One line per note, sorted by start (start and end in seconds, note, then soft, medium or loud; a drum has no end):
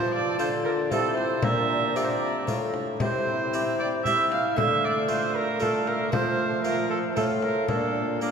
0.00 0.35 F3 medium
0.00 0.41 F3 medium
0.00 0.38 F4 medium
0.00 0.12 C5 medium
0.00 1.40 A5 medium
0.14 0.39 D5 medium
0.38 0.87 D3 medium
0.38 0.93 D3 medium
0.38 0.93 F4 medium
0.38 0.77 F4 medium
0.38 0.77 A4 medium
0.38 0.48 C5 medium
0.65 0.73 A#4 medium
0.91 1.45 C3 medium
0.91 1.40 C3 medium
0.91 1.43 E4 medium
0.91 1.29 F4 soft
0.91 1.16 A4 medium
0.91 1.29 A4 medium
0.91 frame drum soft
1.17 1.45 C5 medium
1.17 frame drum soft
1.42 1.92 A#2 medium
1.42 1.97 A#2 medium
1.42 2.72 D4 medium
1.42 1.98 E5 loud
1.42 2.72 A#5 medium
1.42 frame drum medium
1.96 2.47 C3 medium
1.96 2.44 C3 medium
1.96 2.34 F4 soft
1.96 2.34 A#4 medium
1.96 2.06 D5 medium
2.04 2.12 C5 soft
2.10 2.48 D5 medium
2.48 2.96 A2 soft
2.48 2.99 A2 medium
2.48 2.86 F4 soft
2.48 2.86 A#4 medium
2.48 frame drum medium
2.74 frame drum medium
3.00 4.40 C3 medium
3.00 4.53 C3 medium
3.00 4.01 E4 medium
3.00 3.75 C5 medium
3.00 4.01 G5 medium
3.00 frame drum medium
3.53 3.91 C4 medium
3.53 3.91 E4 medium
3.53 3.91 G4 medium
3.79 3.87 D5 medium
4.04 4.43 C4 medium
4.04 4.59 E4 medium
4.04 4.44 E4 soft
4.04 4.44 G4 medium
4.04 4.30 E5 loud
4.04 4.59 G5 medium
4.04 frame drum medium
4.31 4.57 F5 medium
4.31 frame drum medium
4.57 6.09 D3 medium
4.57 6.10 D3 medium
4.57 5.61 A3 medium
4.57 4.86 E5 medium
4.57 5.60 F5 medium
4.57 frame drum medium
4.85 5.09 D5 medium
5.09 5.46 A3 medium
5.09 5.46 F4 medium
5.09 5.37 C5 medium
5.36 5.63 A#4 loud
5.60 5.98 A3 medium
5.60 6.12 A3 medium
5.60 5.98 F4 medium
5.60 5.89 A4 medium
5.60 6.12 F5 medium
5.60 frame drum soft
5.87 6.13 A#4 medium
5.87 frame drum soft
6.12 7.12 F3 medium
6.12 7.17 F3 medium
6.12 7.13 A3 medium
6.12 6.64 C5 medium
6.12 7.13 F5 medium
6.12 frame drum medium
6.64 7.02 A3 medium
6.64 7.02 F4 medium
6.64 6.89 A#4 medium
6.90 6.98 A4 medium
7.16 7.67 A2 medium
7.16 7.65 A2 medium
7.16 7.68 A3 medium
7.16 7.54 A3 medium
7.16 7.55 F4 medium
7.16 7.24 A4 medium
7.16 7.68 F5 medium
7.16 frame drum medium
7.42 7.68 A#4 medium
7.42 frame drum soft
7.68 8.31 A#2 medium
7.68 8.20 D4 medium
7.68 8.23 A4 medium
7.68 8.21 F5 medium
7.68 frame drum medium
8.21 8.31 A#3 medium
8.21 8.31 D4 medium
8.21 8.31 F4 medium
8.21 8.31 A#4 medium
8.21 8.31 F5 medium